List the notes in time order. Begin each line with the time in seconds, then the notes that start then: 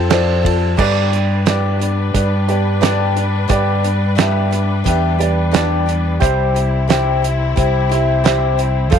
Already playing: F2 F3 C4 A4
0.09 F3 C4 F4 A4 C5 D5 A5, snare, ride
0.42 C4 F4 A4 A5, kick, ride
0.77 G2 D3 G3 B3 D4 G4 B4 D5, kick, crash
1.12 G3 B3 D4 G4, closed hi-hat
1.45 G2 D3 G3 B3 D4 G4 B4 D5, snare, closed hi-hat
1.79 G3 B3 D4 G4, closed hi-hat
2.13 G2 G3 B3 D4 G4 B4 D5, kick, closed hi-hat
2.47 G3 B3 D4 G4 B4 D5, closed hi-hat
2.80 G2 D3 G3 B3 D4 G4 B4 D5, snare, closed hi-hat
3.15 G3 B3 D4 G4, closed hi-hat
3.48 G2 D3 G3 B3 D4 G4 B4 D5, kick, closed hi-hat
3.83 G3 B3 D4 G4, closed hi-hat
4.15 G2 D3 G3 B3 D4 G4 B4, snare, closed hi-hat
4.20 E5
4.51 G3 B3 D4 G4, closed hi-hat
4.84 E2 G3 B3 D4 G4 B4 E5, kick, closed hi-hat
5.19 G3 B3 D4 G4 B4 D5, closed hi-hat
5.52 G2 D3 G3 B3 D4 G4 B4 D5, snare, closed hi-hat
5.86 G3 B3 D4 G4, closed hi-hat
6.20 C2 C3 G3 C4 E4 G4 C5 E5, kick, closed hi-hat
6.54 C4 E4 G4, closed hi-hat
6.88 C3 G3 C4 E4 G4 C5 E5, snare, closed hi-hat
7.22 C4 E4 G4, closed hi-hat
7.55 C2 G3 C4 E4 G4 C5 E5, kick, closed hi-hat
7.89 C4 E4 G4 C5 E5, closed hi-hat
8.24 C3 G3 C4 E4 G4 C5 E5, snare, closed hi-hat
8.57 C4 E4 G4, closed hi-hat
8.90 F2 F3 C4 F4 A4 C5 F5, kick, closed hi-hat